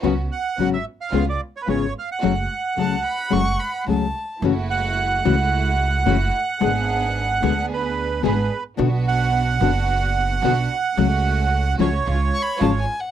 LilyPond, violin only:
\new Staff \with { instrumentName = "Violin" } { \time 4/4 \key fis \minor \tempo 4 = 110 r1 | r4 a''8 b''8 cis'''8 b''8 a''4 | r1 | r1 |
r1 | r2 \tuplet 3/2 { r8. cis'''16 b''8 a''8 gis''8 fis''8 } | }